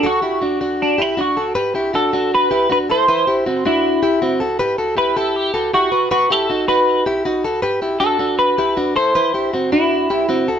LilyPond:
<<
  \new Staff \with { instrumentName = "Clean electric guitar" } { \time 4/4 \key g \major \tempo 4 = 158 fis'2 d'8 e'8 fis'8. r16 | r4 a'4 b'4 b'8 c''8~ | c''4 r8 e'2 r8 | r4 b'8 a'8 g'4 fis'4 |
fis'8 a'4 b'4 r4. | r4 a'4 b'4. c''8~ | c''4 r8 e'2 r8 | }
  \new Staff \with { instrumentName = "Clean electric guitar" } { \time 4/4 \key g \major <fis' a'>8 <e' g'>8 <d' fis'>8 <d' fis'>4 <e' g'>8 <d' fis'>8 <fis' a'>8 | <g' b'>8 <e' g'>8 <d' fis'>8 <d' fis'>4 <e' g'>8 <d' fis'>8 <e' a'>8 | <e' b'>8 <e' g'>8 <c' fis'>8 <d' fis'>4 <e' g'>8 <c' fis'>8 <fis' a'>8 | <g' b'>8 <fis' a'>8 <e' g'>8 <e' g'>4 <fis' a'>8 <e' g'>8 <fis' b'>8 |
<fis' b'>8 <e' g'>8 <dis' fis'>8 <dis' fis'>4 <e' g'>8 <dis' fis'>8 <fis' a'>8 | <g' b'>8 <e' g'>8 <d' fis'>8 <d' fis'>4 <e' g'>8 <d' fis'>8 <e' a'>8 | <e' b'>8 <e' g'>8 <c' fis'>8 <d' fis'>4 <e' g'>8 <c' fis'>8 <fis' a'>8 | }
>>